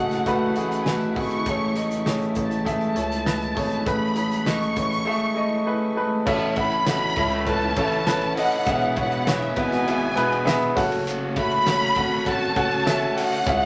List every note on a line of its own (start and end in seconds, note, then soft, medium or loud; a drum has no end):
0.00 0.52 F#1 loud
0.00 6.23 C#3 medium
0.00 6.23 E3 medium
0.00 1.43 F#3 medium
0.00 0.26 A3 medium
0.00 6.22 A3 medium
0.00 6.22 E4 medium
0.00 0.27 F#4 medium
0.00 0.58 G#4 medium
0.00 1.49 D#5 medium
0.00 1.48 E5 medium
0.00 0.81 F#5 medium
0.11 snare soft
0.11 closed hi-hat soft
0.26 0.51 A3 loud
0.26 0.52 F#4 loud
0.26 0.52 B4 loud
0.26 kick medium
0.26 closed hi-hat medium
0.56 1.13 A1 medium
0.56 0.82 A3 medium
0.56 0.82 F#4 medium
0.56 0.82 G#4 medium
0.56 closed hi-hat medium
0.71 closed hi-hat soft
0.81 0.90 G#5 medium
0.86 1.11 A3 medium
0.86 1.12 F#4 medium
0.86 1.12 B4 medium
0.86 snare loud
0.91 0.99 F#5 medium
1.00 1.08 E5 medium
1.00 closed hi-hat soft
1.10 1.18 F#5 medium
1.15 1.44 G#1 medium
1.15 1.41 A3 medium
1.15 1.41 F#4 medium
1.15 1.42 G#4 medium
1.15 2.04 C#6 medium
1.15 kick medium
1.15 open hi-hat medium
1.31 closed hi-hat medium
1.46 2.32 A1 loud
1.46 2.33 A2 medium
1.46 6.23 G#3 medium
1.46 1.71 A3 medium
1.46 1.72 G#4 medium
1.46 1.72 C#5 medium
1.46 kick loud
1.46 closed hi-hat medium
1.75 2.01 A3 medium
1.75 2.01 G#4 medium
1.75 2.02 D#5 medium
1.75 closed hi-hat medium
1.91 closed hi-hat soft
2.06 2.31 A3 medium
2.06 2.32 G#4 medium
2.06 2.32 C#5 medium
2.06 snare loud
2.22 closed hi-hat soft
2.35 2.92 A1 loud
2.35 2.61 A3 medium
2.35 2.61 G#4 medium
2.35 2.62 C#5 medium
2.35 kick medium
2.35 closed hi-hat medium
2.42 2.67 A5 medium
2.51 closed hi-hat soft
2.65 2.91 A3 loud
2.65 2.91 G#4 medium
2.65 2.92 E5 loud
2.65 kick medium
2.65 closed hi-hat medium
2.71 3.85 A5 medium
2.81 closed hi-hat soft
2.95 3.53 C#2 medium
2.95 3.21 A3 medium
2.95 3.21 G#4 medium
2.95 3.21 C#5 medium
2.95 closed hi-hat medium
3.12 closed hi-hat soft
3.25 3.51 A3 medium
3.25 3.51 G#4 medium
3.25 3.52 B4 medium
3.25 snare loud
3.41 closed hi-hat soft
3.55 3.84 G#1 loud
3.55 3.81 A3 medium
3.55 3.81 G#4 medium
3.55 3.82 C#5 medium
3.55 kick loud
3.55 open hi-hat medium
3.71 closed hi-hat medium
3.86 4.72 A1 loud
3.86 4.73 A2 medium
3.86 4.11 A3 medium
3.86 4.12 G#4 medium
3.86 4.12 B4 loud
3.86 4.47 B5 medium
3.86 kick loud
3.86 closed hi-hat medium
4.15 4.41 A3 medium
4.15 4.41 G#4 medium
4.15 4.42 C#5 medium
4.15 closed hi-hat medium
4.31 closed hi-hat soft
4.45 4.71 A3 medium
4.45 4.71 G#4 medium
4.45 4.72 D#5 medium
4.45 5.97 C#6 medium
4.45 snare loud
4.62 closed hi-hat soft
4.75 5.05 A1 loud
4.75 5.01 A3 medium
4.75 5.01 G#4 medium
4.75 5.02 C#5 medium
4.75 kick medium
4.75 closed hi-hat medium
4.92 closed hi-hat soft
5.05 5.31 A3 loud
5.05 5.31 G#4 medium
5.05 5.32 E5 loud
5.35 5.61 A3 medium
5.35 5.61 G#4 medium
5.35 5.62 D#5 medium
5.65 5.91 A3 medium
5.65 5.91 G#4 medium
5.65 5.92 B4 medium
5.96 6.21 A3 medium
5.96 6.21 G#4 medium
5.96 6.22 B4 loud
6.26 7.13 A1 loud
6.26 7.13 A2 medium
6.26 8.65 A2 medium
6.26 6.50 B2 loud
6.26 8.65 C#3 medium
6.26 8.65 E3 medium
6.26 6.50 B3 loud
6.26 6.51 C#4 loud
6.26 8.64 C#4 medium
6.26 6.51 E4 medium
6.26 10.73 E4 medium
6.26 6.52 A4 medium
6.26 6.52 E5 loud
6.26 kick loud
6.26 crash loud
6.56 6.80 A2 medium
6.56 6.80 A3 loud
6.56 6.81 C#4 medium
6.56 6.81 E4 medium
6.56 6.82 A4 medium
6.56 6.82 F#5 medium
6.56 7.43 B5 loud
6.56 kick medium
6.56 ride medium
6.72 ride soft
6.86 7.11 B2 medium
6.86 7.11 B3 loud
6.86 7.11 C#4 medium
6.86 7.11 E4 medium
6.86 7.12 A4 medium
6.86 7.12 F#5 medium
6.86 snare loud
6.86 ride medium
7.02 ride soft
7.16 7.73 C#2 loud
7.16 7.73 A2 loud
7.16 7.73 A3 loud
7.16 7.41 C#4 medium
7.16 7.41 E4 medium
7.16 7.42 A4 medium
7.16 7.42 E5 medium
7.16 kick medium
7.16 ride medium
7.32 ride soft
7.46 7.71 C#4 medium
7.46 7.72 E4 medium
7.46 7.72 A4 medium
7.46 7.72 B4 medium
7.46 8.33 A5 loud
7.46 kick medium
7.46 ride medium
7.62 ride soft
7.76 8.33 A1 loud
7.76 8.00 A2 medium
7.76 8.01 A3 loud
7.76 8.02 C#4 loud
7.76 8.02 E4 medium
7.76 8.02 A4 medium
7.76 8.02 C#5 loud
7.76 kick loud
7.76 ride medium
7.92 ride soft
8.06 8.31 C#4 medium
8.06 8.32 E4 medium
8.06 8.32 A4 medium
8.06 8.32 B4 loud
8.06 snare loud
8.06 ride medium
8.21 ride soft
8.36 8.61 C#4 medium
8.36 8.61 E4 medium
8.36 8.62 A4 medium
8.36 8.62 D#5 medium
8.36 8.97 F#5 loud
8.36 open hi-hat medium
8.36 ride medium
8.52 ride medium
8.66 9.53 E1 loud
8.66 10.75 G#2 medium
8.66 10.75 B2 medium
8.66 8.91 C#3 loud
8.66 10.74 E3 medium
8.66 9.53 E3 medium
8.66 8.91 B3 medium
8.66 10.75 B3 medium
8.66 8.91 C#4 loud
8.66 8.92 E4 medium
8.66 8.92 G#4 medium
8.66 8.92 E5 loud
8.66 kick loud
8.66 hi-hat pedal medium
8.66 ride medium
8.81 ride soft
8.96 9.21 B2 medium
8.96 9.21 B3 medium
8.96 9.21 B3 loud
8.96 9.22 E4 medium
8.96 9.22 G#4 medium
8.96 9.22 C#5 medium
8.96 9.25 F#5 medium
8.96 kick medium
8.96 ride medium
9.12 ride soft
9.26 9.51 C#3 medium
9.26 9.51 B3 medium
9.26 9.51 C#4 loud
9.26 9.51 E4 medium
9.26 9.52 G#4 medium
9.26 9.52 C#5 medium
9.26 9.58 E5 medium
9.26 snare loud
9.26 ride medium
9.42 ride soft
9.56 10.13 G#1 loud
9.56 10.13 B2 loud
9.56 9.81 B3 medium
9.56 10.13 B3 loud
9.56 9.82 E4 medium
9.56 9.82 G#4 medium
9.56 9.82 E5 medium
9.56 10.73 G#5 medium
9.56 kick medium
9.56 ride medium
9.72 snare soft
9.72 ride soft
9.86 10.11 B3 medium
9.86 10.12 E4 medium
9.86 10.12 G#4 medium
9.86 10.12 E5 medium
9.86 ride medium
10.16 10.72 E1 medium
10.16 10.74 B2 medium
10.16 10.41 B3 loud
10.16 10.74 B3 loud
10.16 10.41 E4 medium
10.16 10.42 G#4 medium
10.16 10.42 B4 loud
10.16 ride medium
10.32 ride soft
10.45 10.71 B3 loud
10.45 10.71 E4 loud
10.45 10.71 G#4 loud
10.45 10.72 E5 loud
10.45 snare loud
10.45 ride medium
10.62 ride soft
10.75 11.93 F#1 loud
10.75 13.65 C#3 medium
10.75 13.45 F#3 medium
10.75 13.44 A3 medium
10.75 11.26 C#4 loud
10.75 13.65 C#4 medium
10.75 11.26 F#4 medium
10.75 13.45 F#4 loud
10.75 11.26 A4 medium
10.75 11.27 F#5 loud
10.75 kick loud
10.75 open hi-hat medium
10.75 ride medium
10.92 ride medium
11.07 hi-hat pedal medium
11.07 ride medium
11.36 11.61 C#4 medium
11.36 11.61 F#4 medium
11.36 11.62 A4 medium
11.36 11.62 E5 medium
11.36 12.23 B5 loud
11.36 kick medium
11.36 ride medium
11.51 ride soft
11.66 11.91 C#4 medium
11.66 11.92 F#4 medium
11.66 11.92 A4 medium
11.66 11.92 C#5 medium
11.66 snare loud
11.66 ride medium
11.95 12.52 G#1 loud
11.95 12.21 C#4 medium
11.95 12.22 F#4 medium
11.95 12.22 A4 medium
11.95 12.22 F#5 medium
11.95 kick medium
11.95 ride medium
12.11 ride soft
12.25 12.51 C#4 medium
12.25 12.51 F#4 medium
12.25 12.51 A4 medium
12.25 12.51 F#5 medium
12.25 13.18 A5 loud
12.25 kick medium
12.25 ride medium
12.41 ride soft
12.56 13.12 F#1 loud
12.56 12.81 C#4 loud
12.56 12.81 F#4 medium
12.56 12.82 A4 medium
12.56 12.82 F#5 loud
12.56 kick loud
12.56 ride medium
12.71 ride soft
12.86 13.11 C#4 loud
12.86 13.11 F#4 medium
12.86 13.12 A4 medium
12.86 13.12 E5 loud
12.86 snare loud
12.86 ride medium
13.16 13.41 C#4 medium
13.16 13.41 F#4 medium
13.16 13.42 A4 medium
13.16 13.42 F#5 medium
13.16 13.65 F#5 loud
13.16 open hi-hat medium
13.16 ride medium
13.32 ride medium
13.46 13.65 C#2 loud
13.46 13.65 G#2 medium
13.46 13.65 C#3 medium
13.46 13.65 E3 medium
13.46 13.65 C#4 medium
13.46 13.65 E4 medium
13.46 13.65 G#4 medium
13.46 13.65 E5 loud
13.46 kick loud
13.46 hi-hat pedal medium
13.46 ride medium
13.62 ride soft